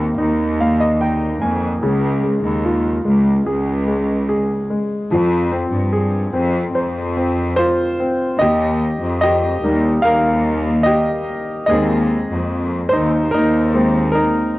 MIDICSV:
0, 0, Header, 1, 3, 480
1, 0, Start_track
1, 0, Tempo, 821918
1, 1065, Time_signature, 4, 2, 24, 8
1, 8520, End_track
2, 0, Start_track
2, 0, Title_t, "Grand piano"
2, 0, Program_c, 0, 0
2, 0, Control_c, 0, 64, 127
2, 0, Note_on_c, 0, 51, 61
2, 0, Note_on_c, 0, 58, 45
2, 0, Note_on_c, 0, 60, 54
2, 107, Note_on_c, 0, 63, 57
2, 344, Note_off_c, 0, 58, 0
2, 353, Note_on_c, 0, 58, 49
2, 354, Note_on_c, 0, 77, 62
2, 461, Note_off_c, 0, 77, 0
2, 470, Note_on_c, 0, 75, 67
2, 563, Note_off_c, 0, 60, 0
2, 579, Note_off_c, 0, 75, 0
2, 580, Note_off_c, 0, 63, 0
2, 589, Note_on_c, 0, 63, 47
2, 590, Note_on_c, 0, 79, 65
2, 811, Note_off_c, 0, 79, 0
2, 818, Note_off_c, 0, 58, 0
2, 826, Note_on_c, 0, 58, 46
2, 827, Note_on_c, 0, 80, 58
2, 1042, Note_off_c, 0, 51, 0
2, 1049, Note_off_c, 0, 80, 0
2, 1052, Note_off_c, 0, 63, 0
2, 1058, Note_off_c, 0, 58, 0
2, 1067, Note_on_c, 0, 49, 62
2, 1073, Control_c, 0, 64, 0
2, 1173, Control_c, 0, 64, 127
2, 1304, Note_on_c, 0, 56, 41
2, 1546, Note_on_c, 0, 65, 56
2, 1772, Note_off_c, 0, 56, 0
2, 1781, Note_on_c, 0, 56, 42
2, 2023, Note_on_c, 0, 68, 52
2, 2253, Note_off_c, 0, 56, 0
2, 2262, Note_on_c, 0, 56, 49
2, 2482, Note_off_c, 0, 65, 0
2, 2496, Note_off_c, 0, 68, 0
2, 2505, Note_on_c, 0, 68, 48
2, 2738, Note_off_c, 0, 56, 0
2, 2747, Note_on_c, 0, 56, 48
2, 2962, Note_off_c, 0, 49, 0
2, 2970, Note_off_c, 0, 68, 0
2, 2978, Note_off_c, 0, 56, 0
2, 2985, Note_on_c, 0, 53, 63
2, 2991, Control_c, 0, 64, 0
2, 3103, Control_c, 0, 64, 127
2, 3222, Note_on_c, 0, 60, 52
2, 3461, Note_on_c, 0, 68, 53
2, 3690, Note_off_c, 0, 60, 0
2, 3699, Note_on_c, 0, 60, 52
2, 3942, Note_on_c, 0, 72, 58
2, 4178, Note_off_c, 0, 60, 0
2, 4186, Note_on_c, 0, 60, 47
2, 4399, Note_off_c, 0, 68, 0
2, 4409, Note_off_c, 0, 72, 0
2, 4418, Note_on_c, 0, 72, 95
2, 4431, Note_on_c, 0, 65, 72
2, 4663, Note_off_c, 0, 60, 0
2, 4672, Note_on_c, 0, 60, 48
2, 4881, Note_off_c, 0, 53, 0
2, 4884, Note_off_c, 0, 65, 0
2, 4890, Note_off_c, 0, 72, 0
2, 4898, Note_on_c, 0, 75, 96
2, 4901, Note_off_c, 0, 60, 0
2, 4911, Control_c, 0, 64, 0
2, 4913, Note_on_c, 0, 67, 80
2, 5029, Control_c, 0, 64, 127
2, 5365, Note_off_c, 0, 67, 0
2, 5370, Note_off_c, 0, 75, 0
2, 5379, Note_on_c, 0, 75, 99
2, 5393, Note_on_c, 0, 67, 77
2, 5627, Note_on_c, 0, 55, 45
2, 5629, Note_on_c, 0, 58, 47
2, 5632, Note_on_c, 0, 63, 56
2, 5845, Note_off_c, 0, 67, 0
2, 5853, Note_on_c, 0, 77, 106
2, 5869, Note_on_c, 0, 70, 77
2, 5876, Note_off_c, 0, 75, 0
2, 6323, Note_off_c, 0, 70, 0
2, 6326, Note_on_c, 0, 75, 98
2, 6343, Note_on_c, 0, 67, 78
2, 6353, Note_off_c, 0, 77, 0
2, 6800, Note_off_c, 0, 67, 0
2, 6802, Note_off_c, 0, 55, 0
2, 6802, Note_off_c, 0, 75, 0
2, 6803, Note_off_c, 0, 58, 0
2, 6805, Note_off_c, 0, 63, 0
2, 6811, Note_on_c, 0, 75, 89
2, 6819, Note_on_c, 0, 56, 53
2, 6827, Note_on_c, 0, 58, 43
2, 6829, Note_on_c, 0, 60, 52
2, 6831, Note_on_c, 0, 68, 72
2, 6832, Control_c, 0, 64, 0
2, 6926, Control_c, 0, 64, 127
2, 7514, Note_off_c, 0, 75, 0
2, 7524, Note_off_c, 0, 68, 0
2, 7527, Note_on_c, 0, 72, 82
2, 7549, Note_on_c, 0, 63, 65
2, 7770, Note_off_c, 0, 63, 0
2, 7773, Note_on_c, 0, 70, 86
2, 7783, Note_off_c, 0, 72, 0
2, 7792, Note_on_c, 0, 63, 77
2, 8015, Note_off_c, 0, 56, 0
2, 8018, Note_off_c, 0, 58, 0
2, 8021, Note_off_c, 0, 60, 0
2, 8023, Note_on_c, 0, 56, 42
2, 8026, Note_on_c, 0, 58, 41
2, 8030, Note_on_c, 0, 60, 54
2, 8236, Note_off_c, 0, 70, 0
2, 8241, Note_off_c, 0, 56, 0
2, 8242, Note_off_c, 0, 58, 0
2, 8244, Note_off_c, 0, 60, 0
2, 8245, Note_off_c, 0, 63, 0
2, 8245, Note_on_c, 0, 70, 82
2, 8264, Note_on_c, 0, 63, 71
2, 8520, Note_off_c, 0, 63, 0
2, 8520, Note_off_c, 0, 70, 0
2, 8520, End_track
3, 0, Start_track
3, 0, Title_t, "Cello section"
3, 0, Program_c, 1, 48
3, 0, Note_on_c, 1, 39, 84
3, 86, Note_off_c, 1, 39, 0
3, 99, Note_on_c, 1, 39, 93
3, 798, Note_off_c, 1, 39, 0
3, 825, Note_on_c, 1, 41, 74
3, 1048, Note_off_c, 1, 41, 0
3, 1066, Note_on_c, 1, 37, 99
3, 1402, Note_off_c, 1, 37, 0
3, 1422, Note_on_c, 1, 39, 76
3, 1760, Note_off_c, 1, 39, 0
3, 1783, Note_on_c, 1, 37, 86
3, 2007, Note_off_c, 1, 37, 0
3, 2026, Note_on_c, 1, 37, 94
3, 2722, Note_off_c, 1, 37, 0
3, 2981, Note_on_c, 1, 41, 105
3, 3319, Note_off_c, 1, 41, 0
3, 3341, Note_on_c, 1, 43, 75
3, 3679, Note_off_c, 1, 43, 0
3, 3700, Note_on_c, 1, 41, 100
3, 3925, Note_off_c, 1, 41, 0
3, 3938, Note_on_c, 1, 41, 88
3, 4638, Note_off_c, 1, 41, 0
3, 4901, Note_on_c, 1, 39, 94
3, 5239, Note_off_c, 1, 39, 0
3, 5263, Note_on_c, 1, 41, 68
3, 5600, Note_off_c, 1, 41, 0
3, 5623, Note_on_c, 1, 39, 95
3, 5847, Note_off_c, 1, 39, 0
3, 5863, Note_on_c, 1, 39, 97
3, 6560, Note_off_c, 1, 39, 0
3, 6823, Note_on_c, 1, 39, 101
3, 7160, Note_off_c, 1, 39, 0
3, 7183, Note_on_c, 1, 41, 73
3, 7520, Note_off_c, 1, 41, 0
3, 7548, Note_on_c, 1, 39, 89
3, 7770, Note_off_c, 1, 39, 0
3, 7787, Note_on_c, 1, 39, 95
3, 8482, Note_off_c, 1, 39, 0
3, 8520, End_track
0, 0, End_of_file